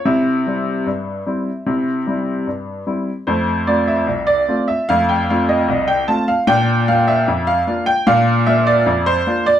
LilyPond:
\new Staff \with { instrumentName = "Upright piano" } { \time 2/4 \key f \major \tempo 4 = 75 << { e''2~ | e''4 r4 | c''8 d''16 e''8 d''8 e''16 | f''16 g''16 f''16 ees''8 g''16 a''16 f''16 |
g''8 f''16 e''8 f''8 g''16 | f''8 e''16 d''8 c''8 d''16 | } \\ { <c e'>8 <g c' e'>8 g,8 <g c' e'>8 | <c e'>8 <g c' e'>8 g,8 <g c' e'>8 | <f, a>8 <a c' f'>8 c,8 <a c' f'>8 | <f, a>8 <a c' f'>8 c,8 <a c' f'>8 |
<bes, d'>8 <bes d' f'>8 f,8 <bes d' f'>8 | <bes, d'>8 <bes d' f'>8 f,8 <bes d' f'>8 | } >> }